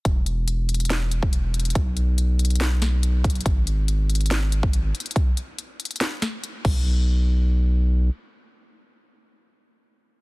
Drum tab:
CC |--------------------------------|--------------------------------|--------------------------------|----------------------------x---|
HH |x---x---x---xxxxx---x---x---xxxx|x---x---x---xxxxx---x---x---xxxx|x---x---x---xxxx----x---x---xxxx|x---x---x---xxxxx---x---x-------|
SD |----------------o---------------|----------------o---o-----------|----------------o---------------|----------------o---o-----------|
BD |o---------------------o---------|o---------------------------o---|o---------------------o---------|o---------------------------o---|

CC |--------------------------------|--------------------------------|
HH |--------------------------------|--------------------------------|
SD |--------------------------------|--------------------------------|
BD |--------------------------------|--------------------------------|